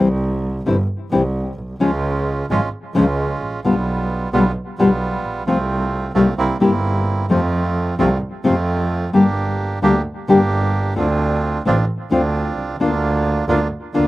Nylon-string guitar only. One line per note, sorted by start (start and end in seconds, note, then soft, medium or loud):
0.66 0.75 C3 medium
0.66 0.75 E3 medium
0.66 0.75 G3 medium
0.66 0.75 C4 medium
0.66 0.76 E4 medium
1.12 1.21 C3 medium
1.12 1.21 E3 medium
1.12 1.21 G3 medium
1.12 1.21 C4 medium
1.12 1.21 E4 medium
1.80 1.89 C#3 medium
1.80 1.90 F3 medium
1.80 1.90 G#3 medium
1.80 1.90 C#4 medium
1.80 1.90 F4 medium
2.50 2.59 C#3 medium
2.50 2.59 F3 medium
2.50 2.59 G#3 medium
2.50 2.59 C#4 medium
2.50 2.59 F4 medium
2.95 3.04 C#3 medium
2.95 3.04 F3 medium
2.95 3.04 G#3 medium
2.95 3.05 C#4 medium
2.95 3.05 F4 medium
3.65 3.73 B2 medium
3.65 3.73 D3 medium
3.65 3.73 G3 medium
3.65 3.74 B3 medium
3.65 3.74 F4 medium
4.33 4.42 B2 medium
4.33 4.42 D3 medium
4.33 4.42 G3 medium
4.33 4.42 B3 medium
4.33 4.43 F4 medium
4.79 4.88 B2 medium
4.79 4.88 D3 medium
4.79 4.88 G3 medium
4.79 4.88 B3 medium
4.79 4.88 F4 medium
5.47 5.56 C3 medium
5.47 5.56 F3 medium
5.47 5.56 A3 medium
5.47 5.56 C4 medium
5.47 5.56 F4 medium
6.15 6.24 C3 medium
6.15 6.24 G3 medium
6.15 6.25 A#3 medium
6.15 6.25 E4 medium
6.15 6.25 G4 medium
6.60 6.70 C3 medium
6.60 6.70 G3 medium
6.60 6.70 A#3 medium
6.60 6.70 E4 medium
6.60 6.70 G4 medium
7.29 7.39 C3 medium
7.29 7.39 F3 medium
7.29 7.39 A3 medium
7.29 7.39 C4 medium
7.29 7.39 F4 medium
7.99 8.08 C3 medium
7.99 8.08 F3 medium
7.99 8.08 A3 medium
7.99 8.08 C4 medium
7.99 8.08 F4 medium
8.44 8.53 C3 medium
8.44 8.53 F3 medium
8.44 8.54 A3 medium
8.44 8.53 C4 medium
8.44 8.54 F4 medium
9.13 9.22 D3 medium
9.13 9.22 G3 medium
9.13 9.23 A#3 medium
9.13 9.23 D4 medium
9.13 9.23 G4 medium
9.82 9.91 D3 medium
9.82 9.91 G3 medium
9.82 9.92 A#3 medium
9.82 9.92 D4 medium
9.82 9.92 G4 medium
10.28 10.37 D3 medium
10.28 10.38 G3 medium
10.28 10.38 A#3 medium
10.28 10.38 D4 medium
10.28 10.38 G4 medium
10.96 11.05 D3 medium
10.96 11.05 A3 medium
10.96 11.06 C4 medium
10.96 11.06 F4 medium
11.65 11.74 D3 medium
11.65 11.74 A3 medium
11.65 11.75 C4 medium
11.65 11.75 F4 medium
12.11 12.20 D3 medium
12.11 12.20 A3 medium
12.11 12.20 C4 medium
12.11 12.20 F4 loud
12.80 12.89 D3 medium
12.80 12.89 A#3 medium
12.80 12.89 D4 medium
12.80 12.89 F4 medium
13.49 13.57 D3 medium
13.49 13.58 A#3 medium
13.49 13.58 D4 medium
13.49 13.58 F4 medium
13.94 14.03 D3 medium
13.94 14.03 A#3 medium
13.94 14.04 D4 medium
13.94 14.03 F4 medium